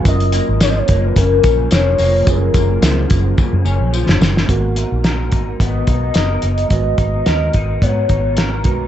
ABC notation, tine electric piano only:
X:1
M:4/4
L:1/8
Q:"Swing 16ths" 1/4=108
K:G#dor
V:1 name="Tine electric piano"
[F,CEA]8 | [F,CEG]8 | [G,B,FA]8 | [G,B,FB]6- [G,B,FB] [G,B,FB] |]